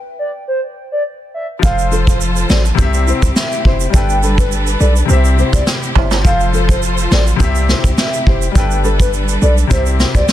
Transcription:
0.19 soft synth lead D5
0.48 soft synth lead C5
0.92 soft synth lead D5
1.34 soft synth lead E5
1.59 808-style bass F1, grand piano F3 F4, string section F3 F4 A4 C5, soft synth lead F5, kick
1.63 grand piano A4 C5, shaker
1.79 shaker
1.91 nylon-string guitar F4 A4 C5, shaker
2.07 soft synth lead C5, kick, shaker
2.21 shaker
2.36 shaker
2.49 808-style bass A1, nylon-string guitar F4 A4 C5, soft synth lead D5, snare, shaker
2.65 muted nylon-string guitar stroke, shaker
2.75 808-style bass C2, grand piano C3 C4, string section C3 C4 E4 G4, kick, shaker
2.80 grand piano G4 E5
2.94 muted nylon-string guitar stroke, shaker
3.07 nylon-string guitar E4 G4 C5, shaker
3.22 808-style bass C2, kick, shaker
3.36 soft synth lead E5, snare, shaker
3.52 shaker
3.65 808-style bass F1, nylon-string guitar E4 G4 C5, kick
3.80 shaker
3.90 808-style bass G1, grand piano G3 D4, string section G3, kick
3.94 string section D4 A4 B4, grand piano A4 B4, soft synth lead G5, shaker
4.09 shaker
4.22 nylon-string guitar D4 A4 B4, shaker
4.38 soft synth lead B4, kick, shaker
4.52 shaker
4.67 shaker
4.80 808-style bass B1, nylon-string guitar D4 A4 B4, soft synth lead D5, shaker
4.95 muted nylon-string guitar stroke, shaker
5.05 808-style bass C2, grand piano C3 C4, string section G4, shaker
5.09 string section C3 C4 E4, grand piano G4 E5, soft synth lead C5
5.24 muted nylon-string guitar stroke, shaker
5.38 nylon-string guitar E4 G4 C5, shaker
5.53 808-style bass C2, soft synth lead D5, kick, shaker
5.67 snare, shaker
5.83 shaker
5.95 808-style bass G1, nylon-string guitar E4 G4 C5, soft synth lead E5, kick, high timbale
6.11 snare, high timbale, shaker
6.21 808-style bass F1, grand piano F3 F4, soft synth lead F5, kick
6.25 string section F3 F4 A4 C5, grand piano A4 C5, shaker
6.40 shaker
6.53 nylon-string guitar F4 A4 C5, shaker
6.69 soft synth lead C5, kick, shaker
6.83 shaker
6.98 shaker
7.11 808-style bass A1, nylon-string guitar F4 A4 C5, soft synth lead D5, snare, shaker
7.26 muted nylon-string guitar stroke, shaker
7.36 grand piano C3 C4, string section C3 C4 E4 G4, shaker
7.40 808-style bass C2, grand piano G4 E5, kick
7.55 muted nylon-string guitar stroke, shaker
7.68 nylon-string guitar E4 G4 C5, snare, shaker
7.84 808-style bass C2, kick, shaker
7.98 soft synth lead E5, snare, shaker
8.13 shaker
8.26 808-style bass F1, nylon-string guitar E4 G4 C5, kick
8.42 shaker
8.52 808-style bass G1, grand piano G3 D4, string section G3 D4 A4 B4, soft synth lead G5, kick
8.56 grand piano A4 B4, shaker
8.71 shaker
8.84 nylon-string guitar D4 A4 B4, shaker
9.00 soft synth lead B4, kick, shaker
9.13 shaker
9.29 shaker
9.41 808-style bass B1, nylon-string guitar D4 A4 B4, soft synth lead D5, shaker
9.57 muted nylon-string guitar stroke, shaker
9.67 808-style bass C2, grand piano C3 C4, string section C3 C4 E4 G4, soft synth lead C5, kick, shaker
9.72 grand piano G4 E5
9.86 muted nylon-string guitar stroke, shaker
9.99 nylon-string guitar E4 G4 C5, snare, shaker
10.15 808-style bass C2, soft synth lead D5, kick, shaker
10.28 cross-stick, snare, shaker

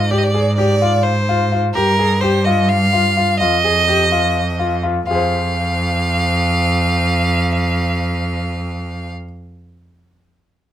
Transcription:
Already playing: cello G#2, violin D#5
0.10 grand piano G4, violin D5
0.18 violin D#5
0.23 violin D5
0.34 grand piano G#4
0.56 grand piano G4, violin D5
0.82 grand piano F4
1.03 violin C5
1.29 grand piano F4
1.52 grand piano F4
1.74 cello G2, grand piano G4, violin A#4
1.99 grand piano G#4
2.21 grand piano G4, violin C5
2.45 grand piano F4, violin D#5
2.69 violin F5
2.93 grand piano F4
3.17 grand piano F4
3.40 cello F2, grand piano F4, violin D#5
3.64 grand piano G#4
3.88 grand piano G4
4.12 grand piano F4
4.59 grand piano F4
4.83 grand piano F4
5.07 cello F2, grand piano F4 G#4, violin F5
5.15 grand piano C5 F5

